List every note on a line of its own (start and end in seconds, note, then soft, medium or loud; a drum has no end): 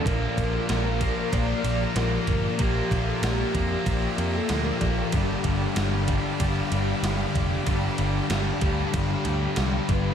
0.03 0.26 A#1 medium
0.03 0.67 A#2 medium
0.03 0.69 F3 medium
0.03 0.70 A#3 loud
0.03 10.14 G4 medium
0.03 1.35 A#4 loud
0.03 10.14 D5 medium
0.03 2.57 F5 medium
0.03 5.10 A#5 medium
0.03 kick loud
0.03 ride loud
0.37 0.57 A#1 medium
0.37 kick medium
0.37 ride medium
0.68 1.10 A#1 medium
0.68 1.30 A#2 medium
0.68 1.32 F3 medium
0.68 1.33 A#3 medium
0.68 snare loud
0.68 ride loud
1.00 2.58 A#2 medium
1.00 2.61 F3 medium
1.00 2.57 A#3 medium
1.00 kick medium
1.00 ride medium
1.31 1.53 A#1 loud
1.31 1.94 A#2 medium
1.31 1.66 F3 medium
1.31 1.62 A#3 medium
1.31 1.97 D5 loud
1.31 kick loud
1.31 ride loud
1.63 1.84 A#1 medium
1.63 1.97 F3 medium
1.63 1.97 A#3 medium
1.63 ride medium
1.95 2.16 A#1 medium
1.95 2.56 A#2 medium
1.95 2.60 F3 medium
1.95 2.60 A#3 medium
1.95 2.59 A#4 loud
1.95 snare loud
1.95 ride loud
2.27 2.47 G1 medium
2.27 kick medium
2.27 ride medium
2.58 2.80 A#1 loud
2.58 3.20 A#2 medium
2.58 3.23 F3 medium
2.58 3.23 A#3 loud
2.58 3.10 G4 loud
2.58 5.11 E5 medium
2.58 kick loud
2.58 ride medium
2.91 3.11 A#1 medium
2.91 kick medium
2.91 ride medium
3.08 3.26 A4 medium
3.21 3.42 A#1 medium
3.21 3.83 A#2 medium
3.21 3.85 F3 medium
3.21 3.86 A#3 medium
3.21 3.71 G4 medium
3.21 snare loud
3.21 ride medium
3.54 3.75 F2 medium
3.54 5.13 A#2 medium
3.54 5.16 F3 medium
3.54 5.12 A#3 medium
3.54 kick loud
3.54 ride medium
3.71 3.85 G4 medium
3.84 4.06 A#1 loud
3.84 4.48 A#2 medium
3.84 4.19 F3 medium
3.84 4.15 A#3 loud
3.84 kick loud
3.84 ride medium
3.89 4.38 G4 medium
4.16 4.38 F2 medium
4.16 4.51 F3 medium
4.16 4.52 A#3 medium
4.16 ride medium
4.36 4.53 A4 medium
4.49 4.70 D2 loud
4.49 5.11 A#2 medium
4.49 5.16 F3 medium
4.49 5.13 A#3 medium
4.49 4.98 A#4 medium
4.49 snare loud
4.49 ride loud
4.81 5.01 A#1 loud
4.81 kick medium
4.81 ride medium
5.12 5.33 G1 medium
5.12 5.75 G2 loud
5.12 5.76 D3 medium
5.12 10.14 F5 medium
5.12 10.14 B5 medium
5.12 kick loud
5.12 ride loud
5.17 5.79 G3 loud
5.44 5.65 G1 medium
5.44 kick medium
5.44 ride medium
5.75 6.17 G1 medium
5.75 6.36 G2 medium
5.75 6.39 D3 medium
5.75 6.41 G3 medium
5.75 snare loud
5.75 ride loud
6.08 7.66 D3 medium
6.08 7.69 G3 medium
6.08 kick medium
6.08 ride medium
6.12 7.66 G2 medium
6.38 6.60 G1 medium
6.38 7.00 G2 medium
6.38 6.72 D3 loud
6.38 6.70 G3 medium
6.38 kick loud
6.38 ride loud
6.70 6.92 G1 medium
6.70 7.01 D3 medium
6.70 7.03 G3 medium
6.70 ride medium
7.01 7.23 G1 loud
7.01 7.63 G2 medium
7.01 7.65 D3 medium
7.01 7.67 G3 medium
7.01 snare loud
7.01 ride loud
7.35 7.55 F1 medium
7.35 kick medium
7.35 ride medium
7.64 7.87 G1 medium
7.64 8.27 G2 medium
7.64 8.29 D3 loud
7.64 8.31 G3 loud
7.64 kick loud
7.64 ride medium
7.98 8.19 G1 medium
7.98 ride medium
8.28 8.50 G1 medium
8.28 8.90 G2 medium
8.28 8.92 D3 medium
8.28 8.95 G3 loud
8.28 snare loud
8.28 ride loud
8.61 8.82 D2 medium
8.61 10.14 G2 medium
8.61 10.14 D3 medium
8.61 10.14 G3 medium
8.61 kick medium
8.61 ride medium
8.92 9.14 G1 medium
8.92 9.55 G2 medium
8.92 9.26 D3 medium
8.92 9.24 G3 medium
8.92 kick loud
8.92 ride loud
9.10 snare soft
9.24 9.45 D2 medium
9.24 9.57 D3 medium
9.24 9.59 G3 medium
9.24 ride medium
9.56 9.77 C2 medium
9.56 10.14 G2 medium
9.56 10.14 D3 medium
9.56 10.14 G3 medium
9.56 snare loud
9.56 ride medium
9.88 10.09 G1 medium
9.88 10.14 B4 medium
9.88 kick medium
9.88 ride medium